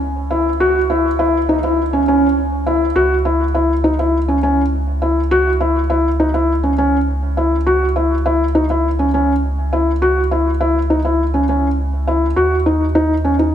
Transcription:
Already playing: C#2
0.31 E4
0.60 F#4
0.90 E4
1.19 E4
1.49 D#4
1.64 E4
1.93 C#4
2.08 C#4
2.67 E4
2.95 C#2 F#4
3.25 E4
3.55 E4
3.84 D#4
3.99 E4
4.28 C#4
4.43 C#4
5.02 E4
5.31 F#4
5.61 E4
5.90 E4
6.20 D#4
6.34 E4
6.63 C#4
6.78 C#4
7.37 E4
7.67 F#4
7.96 E4
8.26 E4
8.55 D#4
8.70 E4
8.99 C#4
9.14 C#4
9.73 E4
10.02 F#4
10.31 E4
10.61 E4
10.90 D#4
11.05 E4
11.34 C#4
11.49 C#4
12.08 E4
12.36 D#2 F#4
12.66 D#4
12.95 D#4
13.24 C#4
13.39 D#4

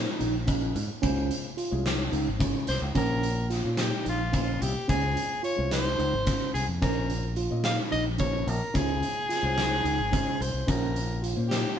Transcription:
Already playing: A#2 A#3 C#4 C5
0.20 A#1 D#4, closed hi-hat
0.47 A#2 A#3 C#4 D#5, kick, closed hi-hat
0.76 G#2, closed hi-hat
1.02 C#2 C#3 G#3 C#4 F4 C5, kick, closed hi-hat
1.31 closed hi-hat
1.57 F4, closed hi-hat
1.71 C2 G#3 C#4 F4 G#4
1.86 snare, closed hi-hat
2.12 C#2 D#4, closed hi-hat
2.28 G#1
2.39 C#3 G#3 C#4 F4 G#4, kick, closed hi-hat
2.67 C2 C5, snare, closed hi-hat
2.82 C#2
2.94 A#1 A#2 A#3 C#4 A#4 C5, kick, closed hi-hat
3.23 closed hi-hat
3.50 F4, snare, closed hi-hat
3.65 A#2 A#3 C#4 C#5
3.77 G4, snare, closed hi-hat
4.05 A#1 D#4, closed hi-hat
4.09 F4
4.33 A#2 A#3 C#4 F4 C5, kick, closed hi-hat
4.62 C2 G4, closed hi-hat
4.88 C#2 C#3 G#3 C#4 F4 G#4 C5, kick, closed hi-hat
5.17 closed hi-hat
5.43 F4 C#5, closed hi-hat
5.56 C2 G#3 C#4 F4 C5
5.71 C5, snare, closed hi-hat
5.99 C#2 D#4, closed hi-hat
6.13 G#1
6.26 C#3 G#3 C#4 F4 C5, kick, snare, closed hi-hat
6.54 C2 G#4, closed hi-hat
6.68 F2
6.81 A#1 A#2 A#3 C#4 A#4 C5, kick, closed hi-hat
7.10 closed hi-hat
7.36 F4, closed hi-hat
7.50 A#2 A#3 C#4 D#5
7.64 F5, snare, closed hi-hat
7.92 A#1 D#4 D#5, closed hi-hat
8.18 A#2 A#3 C#4 C5 C#5, kick, closed hi-hat
8.47 A#1 A#4, closed hi-hat
8.74 C#2 C#3 G#3 C#4 F4 G#4 C5, kick, closed hi-hat
9.03 closed hi-hat
9.29 F4, snare, closed hi-hat
9.42 C2 G#3 C#4 F4 C5
9.58 snare, closed hi-hat
9.84 C#2 D#4, closed hi-hat
9.99 G#1
10.11 C#3 G#3 C#4 F4 C5, kick, closed hi-hat
10.41 C2 C5, closed hi-hat
10.54 C2
10.66 A#1 A#2 A#3 C#4 A#4 C5, kick, closed hi-hat
10.96 closed hi-hat
11.22 F4, closed hi-hat
11.35 A#2 A#3 C#4 C5
11.48 G4, snare, closed hi-hat

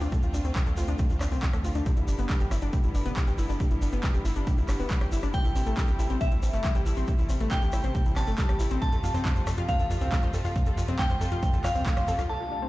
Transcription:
Already playing: D3 A3 C4 F4
0.01 D2 D4, open hi-hat, shaker
0.12 A4, kick, closed hi-hat, shaker
0.23 D2 F4, closed hi-hat, shaker
0.34 D2 D4, open hi-hat, shaker
0.45 D2 C4, closed hi-hat, shaker
0.56 A3, kick, clap, closed hi-hat, shaker
0.66 D2 A4, closed hi-hat, shaker
0.77 D2 F4, open hi-hat, shaker
0.88 D2 D4, closed hi-hat, shaker
0.98 A4, kick, closed hi-hat, shaker
1.10 D2 F4, closed hi-hat, shaker
1.21 D2 D4, cross-stick, clap, open hi-hat, shaker
1.32 C2 C4, open hi-hat, shaker
1.43 A3, kick, clap, closed hi-hat, shaker
1.53 D2 A4, cross-stick, closed hi-hat, shaker
1.64 D2 F4, open hi-hat, shaker
1.75 D2 D4, closed hi-hat, shaker
1.86 G3 B3 E4 G4, kick, closed hi-hat, shaker
1.97 G1 E4, closed hi-hat, shaker
2.08 G1 D4, open hi-hat, shaker
2.19 G1 B3, closed hi-hat, shaker
2.30 G3, kick, clap, closed hi-hat, shaker
2.40 G1 G4, closed hi-hat, shaker
2.51 G1 E4, cross-stick, open hi-hat, shaker
2.62 G1 D4, closed hi-hat, shaker
2.73 G4, kick, closed hi-hat, shaker
2.84 G1 E4, closed hi-hat, shaker
2.95 G1 D4, open hi-hat, shaker
3.06 E1 B3, closed hi-hat, shaker
3.16 G3, kick, clap, closed hi-hat, shaker
3.27 G1 G4, closed hi-hat, shaker
3.38 G1 E4, open hi-hat, shaker
3.49 G1 D4, open hi-hat, shaker
3.60 G4, kick, closed hi-hat, shaker
3.71 G1 E4, closed hi-hat, shaker
3.82 G1 D4, open hi-hat, shaker
3.92 G1 B3, closed hi-hat, shaker
4.03 G3, kick, clap, closed hi-hat, shaker
4.14 G1 G4, closed hi-hat, shaker
4.25 G1 E4, open hi-hat, shaker
4.36 G1 D4, closed hi-hat, shaker
4.47 G4, kick, closed hi-hat, shaker
4.58 G1 E4, closed hi-hat, shaker
4.68 G1 D4, cross-stick, clap, open hi-hat, shaker
4.80 E1 B3, open hi-hat, shaker
4.90 G3, kick, clap, closed hi-hat, shaker
5.01 G1 G4, cross-stick, closed hi-hat, shaker
5.12 G1 E4, open hi-hat, shaker
5.23 G1 D4, cross-stick, closed hi-hat, shaker
5.33 C3 A3 G4 G5, kick, closed hi-hat, shaker
5.45 A1 E4, closed hi-hat, shaker
5.56 A1 C4, open hi-hat, shaker
5.66 A1 A3, closed hi-hat, shaker
5.77 G3, kick, clap, closed hi-hat, shaker
5.88 A1 G4, closed hi-hat, shaker
5.99 A1 E4, open hi-hat, shaker
6.09 A1 C4, closed hi-hat, shaker
6.21 G4 E5, kick, closed hi-hat, shaker
6.32 A1 E4, closed hi-hat, shaker
6.43 A1 C4, open hi-hat, shaker
6.53 G1 A3, closed hi-hat, shaker
6.64 G3, kick, clap, closed hi-hat, shaker
6.75 A1 G4, closed hi-hat, shaker
6.86 A1 E4, open hi-hat, shaker
6.96 A1 C4, open hi-hat, shaker
7.08 G4, kick, closed hi-hat, shaker
7.19 A1 E4, closed hi-hat, shaker
7.29 A1 C4, open hi-hat, shaker
7.40 A1 A3, closed hi-hat, shaker
7.51 G3 G5, kick, clap, closed hi-hat, shaker
7.62 A1 G4, closed hi-hat, shaker
7.72 A1 E4, cross-stick, open hi-hat, shaker
7.83 A1 C4, closed hi-hat, shaker
7.95 G4, kick, closed hi-hat, shaker
8.06 A1 E4, closed hi-hat, shaker
8.16 A1 C4 A5, cross-stick, clap, open hi-hat, shaker
8.27 G1 A3, open hi-hat, shaker
8.38 G3, kick, clap, closed hi-hat, shaker
8.49 A1 G4, cross-stick, closed hi-hat, shaker
8.60 A1 E4, open hi-hat, shaker
8.71 A1 C4, closed hi-hat, shaker
8.82 F3 F4 C5 A5, kick, closed hi-hat, shaker
8.92 F2 A4, closed hi-hat, shaker
9.03 F2 F4, open hi-hat, shaker
9.14 F2 C4, closed hi-hat, shaker
9.25 A3, kick, clap, closed hi-hat, shaker
9.36 F2 C5, closed hi-hat, shaker
9.47 F2 A4, cross-stick, open hi-hat, shaker
9.57 F2 F4, closed hi-hat, shaker
9.69 C5 F5, kick, closed hi-hat, shaker
9.80 F2 A4, closed hi-hat, shaker
9.90 F2 F4, open hi-hat, shaker
10.01 C2 C4, closed hi-hat, shaker
10.12 A3, kick, clap, closed hi-hat, shaker
10.22 F2 C5, closed hi-hat, shaker
10.34 F2 A4, open hi-hat, shaker
10.45 F2 F4, open hi-hat, shaker
10.56 C5, kick, closed hi-hat, shaker
10.66 F2 A4, closed hi-hat, shaker
10.77 F2 F4, open hi-hat, shaker
10.88 F2 C4, closed hi-hat, shaker
10.99 A3 G5, kick, clap, closed hi-hat, shaker
11.10 F2 C5, closed hi-hat, shaker
11.21 F2 A4, open hi-hat, shaker
11.32 F2 F4, closed hi-hat, shaker
11.43 C5, kick, closed hi-hat, shaker
11.53 F2 A4, closed hi-hat, shaker
11.64 F2 F4 F5, cross-stick, clap, open hi-hat, shaker
11.75 C2 C4, open hi-hat, shaker
11.86 A3, kick, clap, closed hi-hat, shaker
11.97 F2 C5, cross-stick, closed hi-hat, shaker
12.08 F2 A4, open hi-hat, shaker
12.19 C2 F4, cross-stick, closed hi-hat, shaker
12.29 C3 A3 D4 F4 A4 A5, impact
12.40 F4
12.51 D4
12.62 C4

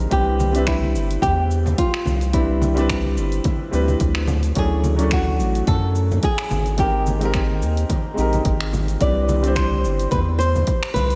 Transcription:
Already playing: G#3 C4 D#4 G4 A#4
0.10 C2 G3 C4 D4 E4 G4 B4, kick, closed hi-hat, cabasa
0.40 high conga, cabasa
0.51 G3 C4 D4, closed hi-hat
0.55 B4 E5, cabasa
0.67 E4, finger snap, kick, closed hi-hat, cabasa
0.82 high conga
0.95 G1, cabasa
1.11 closed hi-hat, cabasa
1.22 E2 G4, kick, closed hi-hat, high conga, cabasa
1.51 cabasa
1.66 high conga, low conga, cabasa
1.78 F4, kick, closed hi-hat, cabasa
1.94 finger snap
2.05 C2, high conga, low conga, cabasa
2.21 closed hi-hat, cabasa
2.33 G3 C4 D4 E4 B4, kick, closed hi-hat, cabasa
2.62 high conga, cabasa
2.74 G3 C4 D4, closed hi-hat, cabasa
2.79 E4 B4
2.90 finger snap, kick, closed hi-hat, cabasa
3.04 high conga
3.17 G1, cabasa
3.32 closed hi-hat, cabasa
3.44 kick, closed hi-hat, high conga, cabasa
3.71 D2 G3 C4 D4 E4 B4, cabasa
3.88 high conga, low conga, cabasa
4.00 D2, kick, closed hi-hat, cabasa
4.15 finger snap
4.27 high conga, low conga, cabasa
4.43 closed hi-hat, cabasa
4.55 D2 F#3 A3 C#4 D4 E4 G#4, kick, closed hi-hat, cabasa
4.84 high conga, cabasa
4.96 F#3 C#4 D4, closed hi-hat, cabasa
5.01 A3 E4
5.11 F#4, finger snap, kick, closed hi-hat, cabasa
5.27 high conga
5.39 A1, cabasa
5.55 closed hi-hat, cabasa
5.67 F#2 A4, kick, closed hi-hat, high conga, cabasa
5.95 cabasa
6.11 high conga, low conga, cabasa
6.23 G#4, kick, closed hi-hat, cabasa
6.38 finger snap
6.51 G#1, high conga, low conga, cabasa
6.66 closed hi-hat, cabasa
6.77 G#3 C4 D#4 G4 A#4, kick, closed hi-hat, cabasa
7.06 high conga, cabasa
7.19 G#3 C4 D#4, closed hi-hat, cabasa
7.24 G4 A#4
7.34 finger snap, kick, closed hi-hat, cabasa
7.50 high conga
7.62 D#2, cabasa
7.77 closed hi-hat, cabasa
7.89 kick, closed hi-hat, high conga, cabasa
8.14 A#1 G#3 C4 D#4, cabasa
8.19 G4 A#4
8.33 closed hi-hat, high conga, low conga, cabasa
8.45 G#1, kick, closed hi-hat, cabasa
8.61 finger snap
8.73 high conga, low conga, cabasa
8.88 closed hi-hat, cabasa
9.00 C2 G3 C4 D4 E4 B4 D5, kick, closed hi-hat, cabasa
9.29 high conga, cabasa
9.41 G3 C4 D4, closed hi-hat, cabasa
9.46 E4 C5
9.56 C5, finger snap, kick, closed hi-hat, cabasa
9.72 high conga
9.85 G1, cabasa
9.99 closed hi-hat, cabasa
10.11 E2 B4, kick, closed hi-hat, high conga, cabasa
10.39 C5, cabasa
10.55 high conga, low conga, cabasa
10.67 kick, closed hi-hat, cabasa
10.83 finger snap
10.94 C2 B4, high conga, low conga, cabasa
11.10 closed hi-hat, cabasa

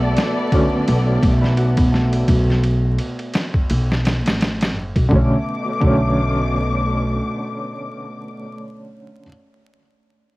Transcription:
Already playing: B1 A3 B3 D4 F#4 A4 D5 F#5
0.02 D5
0.16 A3, snare, ride
0.37 B4
0.52 D3 F#3 A3 C#4 F#4, kick, ride
0.72 B3
0.87 B1 A3, ride
1.07 D5
1.22 B1 A3, kick, ride
1.42 B4, snare
1.57 F#4, ride
1.77 B3, kick, ride
1.92 A3, snare
2.12 D5, ride
2.28 B1, kick, ride
2.50 snare
2.64 ride
2.99 ride
3.19 ride
3.34 snare, ride
3.54 kick
3.70 B1, ride
3.92 snare
4.05 snare, ride
4.26 A1, snare, ride
4.41 snare, ride
4.61 snare, ride
4.76 F#1
4.96 B1, kick, ride
5.08 B1 B2 D3 F#3 A3 D6, kick
5.13 A3 C#4
5.80 B1 D3 F#3 A3, kick
5.84 A3 C#4

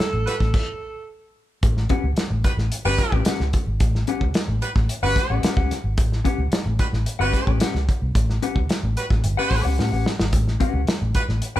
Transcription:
Already playing: A4
0.00 snare
0.13 A1
0.26 G3 F#4 B4, snare, closed hi-hat
0.40 A1, kick, snare
0.54 kick, crash
1.63 A1, kick, closed hi-hat
1.77 snare
1.89 C#4 G4 B4 F#5, kick, closed hi-hat
2.04 C#2
2.16 muted fingered electric bass stroke, snare, closed hi-hat
2.30 A1
2.44 G3 F#4 B4, kick, snare, closed hi-hat
2.57 A1, snare
2.72 closed hi-hat
2.85 G1 G3 C#4 F#4 G4 B4 G5
2.98 kick, snare, closed hi-hat
3.12 A1 C#4 G4 B4 G5, kick
3.25 C#4 G4 B4 F#5, snare, closed hi-hat
3.40 C#2, snare
3.53 kick, closed hi-hat
3.67 G#1
3.80 A1, kick, closed hi-hat
3.95 snare
4.07 C#4 G4 B4 F#5, closed hi-hat
4.21 C#2, kick
4.34 snare, closed hi-hat
4.48 A1
4.62 G3 F#4 B4, closed hi-hat
4.76 A1, kick, snare
4.89 closed hi-hat
5.03 G1 G3 C#4 F#4 G4 B4 F#5
5.16 kick, snare, closed hi-hat
5.30 A1 C#4 G4 B4 F#5
5.43 C#4 G4 B4 F#5, snare, closed hi-hat
5.57 C#2 C#4 G4 B4 F#5, kick
5.71 snare, closed hi-hat
5.84 G#1
5.98 A1, kick, closed hi-hat
6.12 snare
6.25 C#4 G4 B4 F#5, kick, closed hi-hat
6.38 C#2
6.52 snare, closed hi-hat
6.66 A1
6.79 G3 F#4 B4, kick, snare, closed hi-hat
6.93 A1, snare
7.06 closed hi-hat
7.19 G1 G3 C#4 F#4 G4 B4 G5
7.33 kick, snare, closed hi-hat
7.47 A1 C#4 G4 B4 G5, kick
7.60 C#4 G4 B4 F#5, snare, closed hi-hat
7.74 C#2, snare
7.89 kick, closed hi-hat
8.02 C2
8.15 A1, kick, closed hi-hat
8.30 snare
8.42 C#4 G4 B4 F#5, closed hi-hat
8.56 C#2, kick
8.69 muted fingered electric bass stroke, snare, closed hi-hat
8.83 A1
8.97 G3 F#4 B4, closed hi-hat
9.10 A1, kick, snare
9.24 G1, closed hi-hat
9.37 G3 C#4 F#4 G4 B4 F#5
9.51 A1, kick, snare, open hi-hat
9.65 C#2 C#4 G4 B4 F#5
9.79 A2 C#4 G4 B4 F#5, snare
9.92 A1 C#4 G4 B4 F#5
10.06 snare
10.20 G#1, snare
10.33 A1, kick, closed hi-hat
10.48 snare
10.60 C#4 G4 B4 F#5, kick, closed hi-hat
10.74 C#2
10.87 snare, closed hi-hat
11.02 A1
11.15 G3 F#4 B4, kick, snare, closed hi-hat
11.28 A1, snare
11.42 closed hi-hat
11.56 G1 G3 C#4 F#4 G4 B4 G5

